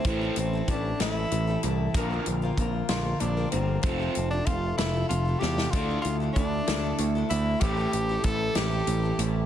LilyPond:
<<
  \new Staff \with { instrumentName = "Tenor saxophone" } { \time 6/8 \key a \phrygian \tempo 4. = 63 c'8 c'8 d'8 e'4 r8 | r4. f'8 d'8 c'8 | c'8. d'16 f'8 e'8 f'8 g'8 | f'8 f'8 d'4 r8 e'8 |
g'4 a'8 g'4 r8 | }
  \new Staff \with { instrumentName = "Steel-string acoustic guitar" } { \time 6/8 \key a \phrygian <a, e g c' e' a'>16 <g c' e' a'>8 <g c' e' a'>16 <g c' e' a'>8 <a, e g c' e' a'>16 <g c' e' a'>8 <g c' e' a'>16 <g c' e' a'>8 | <bes, d bes c' f' bes'>16 <bes c' f' bes'>8 <bes c' f' bes'>16 <bes c' f' bes'>8 <bes, d bes c' f' bes'>16 <bes c' f' bes'>8 <bes c' f' bes'>16 <bes c' f' bes'>8 | <f a c' f' a'>16 <c' f' a'>8 <c' f' a'>16 <a c' f' a'>8 <f a c' f' a'>16 <c' f' a'>8 <c' f' a'>16 <a c' f' a'>8 | <d f a d' e' a'>16 <a d' e' a'>8 <a d' e' a'>16 <a d' e' a'>8 <d f a d' e' a'>16 <a d' e' a'>8 <a d' e' a'>16 <a d' e' a'>8 |
<a, e g c' e' a'>16 <g c' e' a'>8 <g c' e' a'>16 <g c' e' a'>8 <a, e g c' e' a'>16 <g c' e' a'>8 <g c' e' a'>16 <g c' e' a'>8 | }
  \new Staff \with { instrumentName = "Overdriven electric guitar" } { \clef bass \time 6/8 \key a \phrygian <a, e a>8 <a, e>8 <a, e>8 <a, e>8 <a, e>8 <a, e>8 | <bes, d bes>8 <bes, d>8 <bes, d>8 <bes, d>8 <bes, d>8 <bes, d>8 | <f, c f>8 <f, c>8 <f, c>8 <f, c>8 <f, c>8 <f, c>8 | <d a d'>8 <d a>8 <d a>8 <d a>8 <d a>8 <d a>8 |
<a, e a>8 <a, e>8 <a, e>8 <a, e>8 <a, e>8 <a, e>8 | }
  \new Staff \with { instrumentName = "Picked electric bass" } { \clef bass \time 6/8 \key a \phrygian a,,8 a,,8 a,,8 a,,8 a,,8 c,8 | bes,,8 bes,,8 bes,,8 bes,,8 bes,,8 g,,8 | f,,8 f,,8 f,,8 f,,8 f,,8 e,8 | d,8 d,8 d,8 d,8 d,8 d,8 |
a,,8 a,,8 a,,8 a,,8 a,,8 a,,8 | }
  \new DrumStaff \with { instrumentName = "Drums" } \drummode { \time 6/8 <hh bd>8 hh8 <hh bd>8 <hh sn>8 hh8 hh8 | <hh bd>8 hh8 <hh bd>8 <hh sn>8 hh8 hh8 | <hh bd>8 hh8 <hh bd>8 <hh sn>8 hh8 sn16 sn16 | <hh bd>8 hh8 <hh bd>8 <hh sn>8 hh8 hh8 |
<hh bd>8 hh8 <hh bd>8 <hh sn>8 hh8 hh8 | }
>>